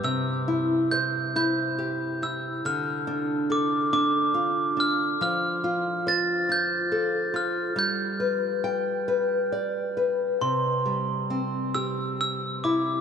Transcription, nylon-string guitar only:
X:1
M:6/8
L:1/8
Q:3/8=46
K:C
V:1 name="Nylon-string guitar"
C, E c E G E | D, D A D F D | F, F c F A F | G, B g B d B |
C, G, C G2 E |]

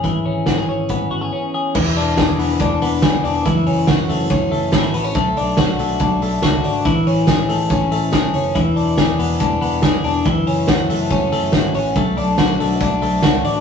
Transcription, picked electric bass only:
X:1
M:4/4
L:1/8
Q:1/4=141
K:Emix
V:1 name="Picked electric bass" clef=bass
G,,, G,,, G,,, G,,, G,,, G,,, z2 | E,,, E,,, E,,, E,,, E,,, E,,, F,,, E,,, | F,,, F,,, F,,, F,,, F,,, F,,, G,,, A,,, | B,,, B,,, z B,,, B,,, B,,, C,, G,,, |
A,,, A,,, A,,, A,,, A,,, A,,, B,,, F,,, | E,,, E,,, E,,, E,,, E,,, E,,, F,,, E,,, | F,,, F,,, F,,, F,,, F,,, F,,, G,,, A,,, | B,,, B,,, B,,, B,,, B,,, B,,, C,, A,,, |]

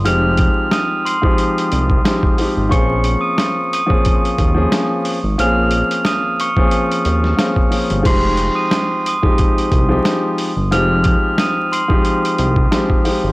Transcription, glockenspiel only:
X:1
M:4/4
L:1/16
Q:"Swing 16ths" 1/4=90
K:Fm
V:1 name="Glockenspiel"
[f'f'']4 [e'e'']2 [c'c'']3 z6 z | [d'd'']3 [e'e''] z2 [e'e''] z8 z | [f'f'']4 [e'e'']2 [d'd'']3 z6 z | [c'c'']3 [e'e''] z2 [e'e''] z8 z |
[f'f'']4 [e'e'']2 [c'c'']3 z6 z |]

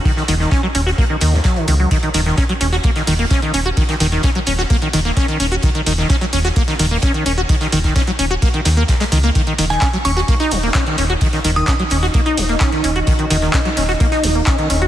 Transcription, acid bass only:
X:1
M:4/4
L:1/16
Q:1/4=129
K:Ebm
V:1 name="Acid bass" clef=bass
E, E, E, E, D G, D G B, E, E, E,, G, E, E, G, | E, E, E, E, D G, D G B, E, E, B, D E, D G | E, E, E, E, D G, D G B, E, E, B, D E, D G | E, E, E, E, D G, D G B, E, E, B, D E, D G |
E, E, E, E, D G, D G B, E, E, B, E,, A, E, B, | E, E, E, E, D G, D G B, E E, B, D E, D G | E, E, E, E, D G, D G B, E E, B, D E, D G | E, E, E, E, D G, D G B, E E, B, D E, D G |]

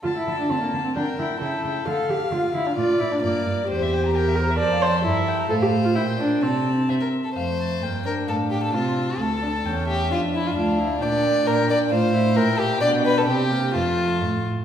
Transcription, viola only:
X:1
M:2/4
L:1/16
Q:1/4=131
K:Dm
V:1 name="Viola"
F E2 D C B,2 C | D2 E2 E4 | A2 G2 F2 E D | F2 E D B,4 |
[K:F] G6 B2 | d2 c2 E4 | A G2 F E2 D2 | C6 z2 |
A,4 B,2 D2- | D4 C4 | A,2 D2 ^C4 | D4 F2 E2 |
D8 | F2 E6 | D4 C2 B,2 | A,6 z2 |]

